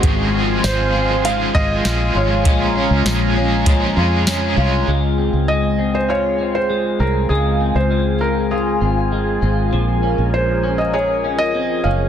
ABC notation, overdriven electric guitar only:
X:1
M:4/4
L:1/8
Q:1/4=99
K:Db
V:1 name="Overdriven electric guitar" clef=bass
[A,,D,F,A,CA] [F,A,CA] [F,A,CA] [F,A,CA] [A,,D,F,A,CA] [F,A,CA] [F,A,CA] [F,A,A] | [B,,F,A,DA] [A,DA] [F,A,DA] [A,DA] [B,,F,A,DA] [A,DA] [F,A,DA] [A,DA] | z8 | z8 |
z8 |]